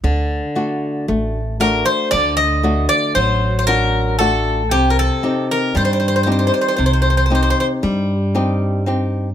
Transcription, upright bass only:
X:1
M:9/8
L:1/8
Q:3/8=39
K:none
V:1 name="Upright bass" clef=bass
D,, z A,,,2 D,,2 A,,,3 | C,, z G,,2 C,,2 G,,3 |]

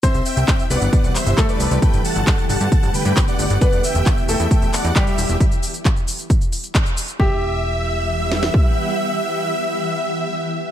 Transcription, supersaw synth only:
X:1
M:4/4
L:1/16
Q:1/4=134
K:Em
V:1 name="Supersaw synth"
[ce]2 [eg]4 [df]2 [df]2 [ce]3 [Bd]3 | [Bg]2 [fa]4 [fa]2 a2 [Bg]3 [df]3 | [df]2 [eg]4 [eg]2 [eg]2 [df]3 [Ge]3 | z16 |
e16- | e16 |]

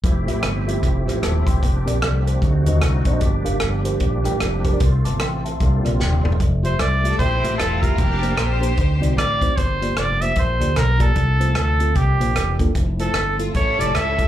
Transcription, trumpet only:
X:1
M:4/4
L:1/8
Q:"Swing" 1/4=151
K:F
V:1 name="Trumpet"
z8 | z8 | z8 | z8 |
z c d2 c2 A B- | B3 z3 d2 | c2 d e c2 B A- | A2 A2 G3 z |
z A2 z ^c d e2 |]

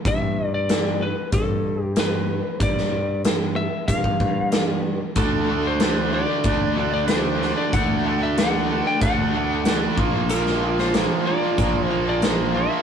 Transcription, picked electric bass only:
X:1
M:4/4
L:1/8
Q:1/4=94
K:Ddor
V:1 name="Picked electric bass" clef=bass
G,,4 G,,4 | G,,4 G,, G,,3 | D,,4 D,,4 | D,,4 D,, D,,2 _B,,,- |
_B,,,3 z B,,,4 |]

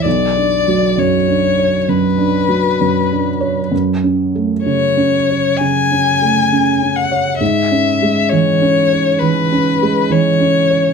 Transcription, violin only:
X:1
M:4/4
L:1/8
Q:1/4=66
K:F#m
V:1 name="Violin"
d2 c2 B4 | z2 c2 g3 f | e2 c2 B2 c2 |]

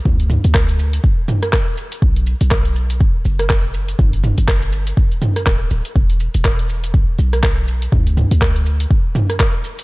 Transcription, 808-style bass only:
X:1
M:4/4
L:1/16
Q:"Swing 16ths" 1/4=122
K:Em
V:1 name="808-style bass" clef=bass
D,,3 D,,4- D,, z8 | B,,,3 B,,,4- B,,, F,,, z F,,,6 | G,,,3 G,,,4- G,,, z4 D,,, z D,,, z | E,,,3 E,,,4- E,,, B,,, z B,,,6 |
D,,3 D,,4- D,, z8 |]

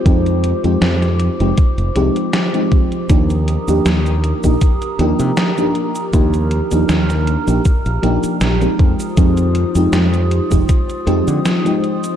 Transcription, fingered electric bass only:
X:1
M:4/4
L:1/16
Q:"Swing 16ths" 1/4=79
K:Fdor
V:1 name="Fingered electric bass" clef=bass
F,,2 z F,, F,,2 z F,,, z F,,, C,, z4 z | E,,2 z E,, E,,2 z B,,, z2 E,, C, z4 | E,,2 z E,, E,,2 z B,,, z B,,, B,,, z B,,, z F,, z | F,,2 z F,, F,,2 z F,,, z2 F,, D, z4 |]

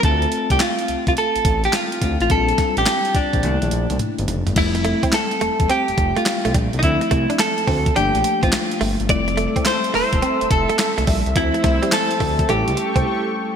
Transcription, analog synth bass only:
X:1
M:4/4
L:1/16
Q:"Swing 16ths" 1/4=106
K:F
V:1 name="Analog synth bass" clef=bass
D,,2 z C,, z2 C,, C,, z A,,, A,,,2 z2 D,, A,,, | B,,,2 z A,,, z2 B,,, B,,, C,, B,,, B,,, C,, z G,,, F,,, G,,, | F,,,3 z3 E,,, E,,, z F,,, F,,, z2 C,, B,,, C,, | D,, z C,, z3 D,,2 G,,, B,,, z A,,, z2 G,,, G,,, |
F,,,3 z3 E,,, E,,, z F,,, F,,, z2 C,, B,,, C,, | D,, z C,, z3 D,,2 A,,, ^C,, z =C,, z4 |]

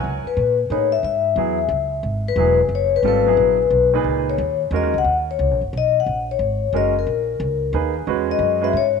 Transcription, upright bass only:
X:1
M:3/4
L:1/8
Q:"Swing" 1/4=179
K:C#dor
V:1 name="Upright bass" clef=bass
C,, z A,,2 =A,,2 | G,,2 E,,2 C,,2 | G,,,2 E,,,2 F,,,2 | G,,,2 A,,,2 B,,,2 |
C,,2 D,,2 (3E,, D,, C,, | D,,2 (3C,, A,,, F,,, B,,,2 | A,,,2 G,,,2 F,,,2 | A,,,2 C,,2 D,,2 |
E,,2 F,,2 G,,2 |]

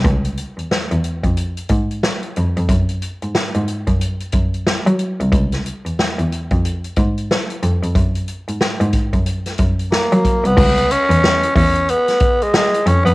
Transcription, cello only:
X:1
M:4/4
L:1/16
Q:"Swing 16ths" 1/4=91
K:Dbmix
V:1 name="Cello" clef=bass
D,,2 z _F,, z F,, z =F,, z2 A,,2 z2 F,, F,, | G,,2 z A,, z A,, z G,, z2 G,,2 z G, z =C,, | D,,2 z _F,, z F,, z =F,, z2 A,,2 z2 F,, F,, | G,,2 z A,, z A,, z G,, z2 G,,2 z G, z =C,, |
D,,2 z _F,, z2 F,,2 z6 =F,, F,, |]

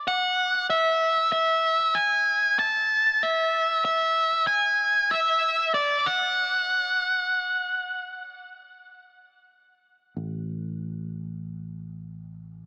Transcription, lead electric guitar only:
X:1
M:4/4
L:1/8
Q:1/4=95
K:F#m
V:1 name="Lead electric guitar"
f2 e2 e2 g2 | a2 e2 e2 g2 | e2 d f4- f- | f6 z2 |
z8 |]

